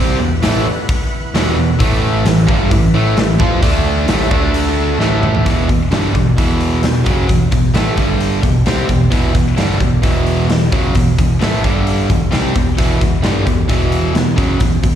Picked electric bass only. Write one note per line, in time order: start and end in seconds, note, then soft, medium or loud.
0.00 0.17 C2 medium
0.22 0.42 E1 medium
0.43 0.64 A1 medium
1.34 1.55 E1 loud
1.57 1.78 E1 medium
1.80 2.23 A1 loud
2.25 2.47 A1 medium
2.48 2.69 G1 medium
2.71 2.92 A1 medium
2.94 3.15 A1 medium
3.17 3.38 A1 medium
3.39 3.61 F2 medium
3.62 4.05 D2 medium
4.08 4.30 A1 medium
4.31 4.96 D2 medium
4.99 5.42 A1 medium
5.46 5.67 E1 medium
5.69 5.90 E1 medium
5.92 6.13 G1 medium
6.15 6.36 E1 medium
6.38 6.80 E1 medium
6.83 7.05 E1 medium
7.06 7.27 F#1 medium
7.30 7.51 E1 medium
7.52 7.73 E1 medium
7.74 7.95 A1 medium
7.98 8.40 G1 medium
8.43 8.64 E1 medium
8.65 8.87 C2 medium
8.89 9.10 E1 medium
9.11 9.33 E1 loud
9.35 9.56 E1 medium
9.58 9.79 G1 medium
9.81 10.02 E1 medium
10.04 10.46 E1 medium
10.50 10.71 E1 medium
10.73 10.94 F#1 medium
10.95 11.16 E1 medium
11.19 11.40 E1 medium
11.42 11.63 A1 medium
11.64 12.06 G1 medium
12.10 12.31 E1 medium
12.33 12.54 C2 medium
12.56 12.77 E1 medium
12.78 12.99 E1 medium
13.01 13.22 E1 medium
13.24 13.45 G1 medium
13.47 13.68 E1 medium
13.70 14.12 E1 medium
14.14 14.36 E1 medium
14.38 14.59 F#1 medium
14.61 14.82 E1 medium
14.83 14.95 E1 medium